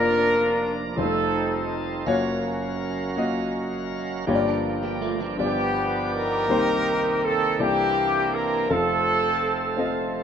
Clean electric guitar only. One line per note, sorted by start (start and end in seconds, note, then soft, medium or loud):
4.47 4.82 D4 medium
4.47 4.82 A#4 medium
4.83 5.01 A#3 medium
4.83 5.01 G4 medium
5.01 5.19 A3 medium
5.01 5.19 F4 medium
5.20 5.55 F3 medium
5.20 5.55 D4 medium